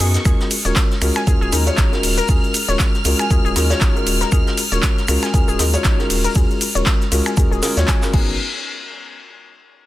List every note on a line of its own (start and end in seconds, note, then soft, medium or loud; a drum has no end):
0.00 0.17 F#2 medium
0.00 0.17 B3 medium
0.00 0.17 C#4 medium
0.00 0.17 D#4 medium
0.00 0.17 F#4 medium
0.00 0.17 A#4 medium
0.00 0.27 C#6 medium
0.00 open hi-hat loud
0.00 ride medium
0.00 shaker medium
0.14 snare soft
0.14 closed hi-hat medium
0.14 shaker soft
0.25 0.34 D#2 loud
0.25 0.50 G#3 medium
0.25 0.50 C#4 medium
0.25 0.51 F4 medium
0.25 0.51 F#4 medium
0.25 0.30 G#4 medium
0.25 0.51 A#4 medium
0.25 8.40 F6 medium
0.25 finger snap medium
0.25 kick loud
0.25 closed hi-hat medium
0.25 ride medium
0.25 shaker medium
0.25 shaker soft
0.40 snare medium
0.40 shaker soft
0.51 open hi-hat loud
0.51 ride medium
0.51 shaker medium
0.65 0.72 D#1 medium
0.65 0.90 G#3 medium
0.65 0.90 C#4 medium
0.65 0.90 F4 medium
0.65 0.90 F#4 medium
0.65 0.90 A#4 medium
0.65 0.68 C#5 medium
0.65 closed hi-hat soft
0.65 closed hi-hat medium
0.65 shaker soft
0.76 kick loud
0.76 snare loud
0.76 clap loud
0.76 closed hi-hat medium
0.76 ride medium
0.76 shaker medium
0.76 shaker soft
0.91 snare medium
0.91 shaker soft
1.01 1.11 C#2 medium
1.01 1.18 G#3 loud
1.01 1.19 C#4 loud
1.01 1.19 F4 medium
1.01 1.19 F#4 medium
1.01 1.19 A#4 loud
1.01 finger snap medium
1.01 open hi-hat loud
1.01 ride medium
1.01 shaker medium
1.16 1.21 G#5 medium
1.16 finger snap medium
1.16 snare soft
1.16 closed hi-hat medium
1.16 shaker soft
1.27 1.36 D#2 medium
1.27 1.50 G#3 medium
1.27 1.50 C#4 medium
1.27 1.50 F4 medium
1.27 1.50 F#4 medium
1.27 1.34 G#4 medium
1.27 1.50 A#4 loud
1.27 kick loud
1.27 closed hi-hat medium
1.27 ride medium
1.27 shaker medium
1.27 shaker soft
1.41 1.48 D#1 loud
1.41 1.49 G#4 loud
1.41 shaker soft
1.52 1.70 D#2 medium
1.52 1.63 G#3 loud
1.52 1.63 C#4 medium
1.52 1.59 D#4 medium
1.52 1.63 F4 medium
1.52 1.63 F#4 medium
1.52 1.64 A#4 loud
1.52 open hi-hat loud
1.52 ride medium
1.52 shaker medium
1.66 1.89 G#3 loud
1.66 1.89 C#4 medium
1.66 1.89 F4 medium
1.66 1.89 F#4 medium
1.66 1.89 C#5 loud
1.66 closed hi-hat medium
1.66 shaker soft
1.77 1.87 A#1 medium
1.77 1.88 D#4 medium
1.77 kick loud
1.77 snare loud
1.77 clap loud
1.77 closed hi-hat medium
1.77 ride medium
1.77 shaker loud
1.77 shaker soft
1.92 2.26 G#3 medium
1.92 2.26 C#4 medium
1.92 2.26 F4 medium
1.92 2.26 F#4 medium
1.92 2.26 A#4 loud
1.92 snare soft
1.92 shaker soft
2.03 2.21 D#1 medium
2.03 open hi-hat medium
2.03 ride medium
2.03 shaker medium
2.18 2.21 A#4 loud
2.18 closed hi-hat medium
2.18 shaker soft
2.28 2.38 D#2 loud
2.28 2.54 G#3 medium
2.28 2.54 C#4 medium
2.28 2.54 F4 medium
2.28 2.54 F#4 medium
2.28 2.33 G#4 medium
2.28 2.54 A#4 medium
2.28 kick loud
2.28 closed hi-hat medium
2.28 ride medium
2.28 shaker medium
2.28 shaker soft
2.44 shaker soft
2.54 open hi-hat loud
2.54 ride medium
2.54 shaker medium
2.68 2.75 D#1 medium
2.68 2.93 G#3 medium
2.68 2.94 C#4 medium
2.68 2.94 F4 medium
2.68 2.94 F#4 medium
2.68 2.94 A#4 medium
2.68 2.72 C#5 medium
2.68 closed hi-hat medium
2.68 shaker soft
2.79 kick loud
2.79 snare loud
2.79 clap loud
2.79 closed hi-hat medium
2.79 ride medium
2.79 shaker medium
2.79 shaker soft
2.94 snare soft
2.94 shaker soft
3.04 3.14 C#2 medium
3.04 3.22 G#3 loud
3.04 3.22 C#4 medium
3.04 3.22 F4 medium
3.04 3.22 F#4 medium
3.04 3.22 A#4 loud
3.04 open hi-hat loud
3.04 ride medium
3.04 shaker medium
3.06 shaker medium
3.19 3.25 G#5 medium
3.19 finger snap medium
3.19 closed hi-hat medium
3.19 shaker soft
3.30 3.39 D#2 medium
3.30 3.54 G#3 medium
3.30 3.54 C#4 medium
3.30 3.54 F4 medium
3.30 3.54 F#4 medium
3.30 3.37 G#4 medium
3.30 3.54 A#4 medium
3.30 kick loud
3.30 closed hi-hat medium
3.30 ride medium
3.30 shaker medium
3.30 shaker soft
3.45 3.52 D#1 loud
3.45 3.53 G#4 loud
3.45 shaker soft
3.55 3.73 D#2 medium
3.55 3.67 G#3 loud
3.55 3.67 C#4 medium
3.55 3.63 D#4 medium
3.55 3.67 F4 medium
3.55 3.67 F#4 medium
3.55 3.67 A#4 loud
3.55 snare soft
3.55 open hi-hat loud
3.55 ride medium
3.55 shaker medium
3.70 3.92 G#3 loud
3.70 3.92 C#4 medium
3.70 3.92 F4 medium
3.70 3.92 F#4 medium
3.70 3.92 C#5 loud
3.70 snare medium
3.70 closed hi-hat medium
3.70 shaker soft
3.81 3.90 A#1 medium
3.81 3.92 D#4 medium
3.81 kick loud
3.81 snare loud
3.81 clap loud
3.81 closed hi-hat medium
3.81 ride medium
3.81 shaker medium
3.81 shaker soft
3.95 4.29 G#3 loud
3.95 4.29 C#4 medium
3.95 4.29 F4 medium
3.95 4.30 F#4 medium
3.95 4.30 A#4 loud
3.95 shaker soft
4.07 4.24 D#1 medium
4.07 open hi-hat medium
4.07 ride medium
4.07 shaker medium
4.21 4.24 A#4 loud
4.21 snare soft
4.21 closed hi-hat medium
4.21 shaker soft
4.32 4.41 D#2 loud
4.32 4.57 G#3 medium
4.32 4.57 C#4 medium
4.32 4.57 F4 medium
4.32 4.57 F#4 medium
4.32 4.36 G#4 medium
4.32 4.58 A#4 medium
4.32 finger snap medium
4.32 kick loud
4.32 closed hi-hat medium
4.32 ride medium
4.32 shaker medium
4.32 shaker soft
4.47 snare medium
4.47 shaker soft
4.58 open hi-hat loud
4.58 ride medium
4.58 shaker medium
4.72 4.79 D#1 medium
4.72 4.97 G#3 medium
4.72 4.97 C#4 medium
4.72 4.97 F4 medium
4.72 4.97 F#4 medium
4.72 4.97 A#4 medium
4.72 4.75 C#5 medium
4.72 closed hi-hat soft
4.72 closed hi-hat medium
4.72 shaker soft
4.82 kick loud
4.82 snare loud
4.82 clap loud
4.82 closed hi-hat medium
4.82 ride medium
4.82 shaker medium
4.82 shaker soft
4.97 snare medium
4.97 shaker soft
5.08 5.17 C#2 medium
5.08 5.25 G#3 loud
5.08 5.25 C#4 medium
5.08 5.25 F4 medium
5.08 5.25 F#4 medium
5.08 5.26 A#4 loud
5.08 finger snap medium
5.08 open hi-hat loud
5.08 ride medium
5.08 shaker medium
5.09 shaker medium
5.23 5.28 G#5 medium
5.23 finger snap medium
5.23 snare soft
5.23 closed hi-hat medium
5.23 shaker soft
5.33 5.43 D#2 medium
5.33 5.57 G#3 medium
5.33 5.57 C#4 medium
5.33 5.57 F4 medium
5.33 5.57 F#4 medium
5.33 5.41 G#4 medium
5.33 5.57 A#4 loud
5.33 kick loud
5.33 closed hi-hat medium
5.33 ride medium
5.33 shaker medium
5.33 shaker soft
5.48 5.55 D#1 loud
5.48 5.56 G#4 loud
5.48 shaker medium
5.48 shaker soft
5.59 5.76 D#2 medium
5.59 5.70 G#3 loud
5.59 5.70 C#4 medium
5.59 5.66 D#4 medium
5.59 5.70 F4 medium
5.59 5.70 F#4 medium
5.59 5.70 A#4 loud
5.59 snare medium
5.59 open hi-hat loud
5.59 ride medium
5.59 shaker medium
5.73 5.95 G#3 loud
5.73 5.95 C#4 medium
5.73 5.96 F4 medium
5.73 5.96 F#4 medium
5.73 5.96 C#5 loud
5.73 closed hi-hat medium
5.73 shaker medium
5.73 shaker soft
5.84 5.94 A#1 medium
5.84 5.95 D#4 medium
5.84 kick loud
5.84 snare loud
5.84 clap loud
5.84 closed hi-hat medium
5.84 ride medium
5.84 shaker medium
5.84 shaker soft
5.99 6.33 G#3 medium
5.99 6.33 C#4 medium
5.99 6.33 F4 medium
5.99 6.33 F#4 medium
5.99 6.33 A#4 loud
5.99 snare medium
5.99 shaker soft
6.10 6.27 D#1 medium
6.10 open hi-hat medium
6.10 ride medium
6.10 shaker medium
6.24 6.28 A#4 loud
6.24 closed hi-hat medium
6.24 shaker soft
6.35 6.45 D#2 loud
6.35 6.61 G#3 medium
6.35 6.61 C#4 medium
6.35 6.61 F4 medium
6.35 6.61 F#4 medium
6.35 6.40 G#4 medium
6.35 6.61 A#4 medium
6.35 kick loud
6.35 closed hi-hat medium
6.35 ride medium
6.35 shaker medium
6.36 shaker soft
6.51 shaker soft
6.61 open hi-hat loud
6.61 ride medium
6.61 shaker medium
6.75 6.82 D#1 medium
6.75 7.00 G#3 medium
6.75 7.00 C#4 medium
6.75 7.00 F4 medium
6.75 7.01 F#4 medium
6.75 7.01 A#4 medium
6.75 6.79 C#5 medium
6.75 closed hi-hat medium
6.75 shaker soft
6.86 kick loud
6.86 snare loud
6.86 clap loud
6.86 closed hi-hat medium
6.86 ride medium
6.86 shaker medium
6.86 shaker soft
7.01 snare soft
7.01 shaker soft
7.11 7.21 C#2 medium
7.11 7.29 G#3 loud
7.11 7.29 C#4 medium
7.11 7.29 F4 medium
7.11 7.29 F#4 medium
7.11 7.29 A#4 loud
7.11 open hi-hat medium
7.11 ride medium
7.11 shaker medium
7.26 7.32 G#5 medium
7.26 finger snap medium
7.26 closed hi-hat medium
7.26 shaker soft
7.37 7.46 D#2 medium
7.37 7.60 G#3 medium
7.37 7.60 C#4 medium
7.37 7.60 F4 medium
7.37 7.61 F#4 medium
7.37 7.44 G#4 medium
7.37 7.61 A#4 loud
7.37 kick loud
7.37 closed hi-hat medium
7.37 ride medium
7.37 shaker medium
7.37 shaker soft
7.51 7.59 D#1 loud
7.51 7.60 G#4 loud
7.51 shaker soft
7.62 7.73 G#3 loud
7.62 7.73 C#4 medium
7.62 7.74 F4 medium
7.62 7.74 F#4 medium
7.62 7.70 G#4 medium
7.62 7.74 A#4 loud
7.62 snare loud
7.62 open hi-hat loud
7.62 ride medium
7.62 shaker medium
7.77 7.84 D#2 medium
7.77 7.99 G#3 loud
7.77 7.99 C#4 medium
7.77 7.99 F4 loud
7.77 7.99 F#4 medium
7.77 7.99 C#5 loud
7.77 snare medium
7.77 closed hi-hat medium
7.77 shaker soft
7.88 7.95 G#5 medium
7.88 kick loud
7.88 snare loud
7.88 clap loud
7.88 closed hi-hat medium
7.88 ride medium
7.88 shaker medium
7.88 shaker soft
8.02 8.13 G#3 loud
8.02 8.11 C#4 medium
8.02 8.14 F4 medium
8.02 8.12 F#4 medium
8.02 8.13 A#4 loud
8.02 snare loud
8.02 clap soft
8.02 shaker medium
8.02 shaker soft
8.12 8.37 G#1 medium
8.12 8.32 B3 medium
8.12 8.33 C#4 medium
8.12 8.33 D#4 medium
8.12 8.33 F#4 medium
8.12 8.37 G#4 medium
8.12 8.34 A#4 medium
8.12 kick loud
8.12 crash medium